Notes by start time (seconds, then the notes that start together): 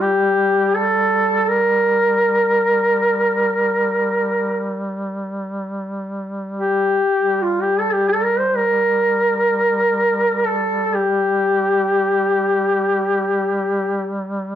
Already playing: G3
0.01 G4
0.75 A4
1.48 A#4
6.57 G4
7.20 G3
7.42 F4
7.62 G4
7.80 A4
7.93 G4
8.09 A4
8.24 A#4
8.39 C5
8.56 A#4
10.46 A4
10.94 G4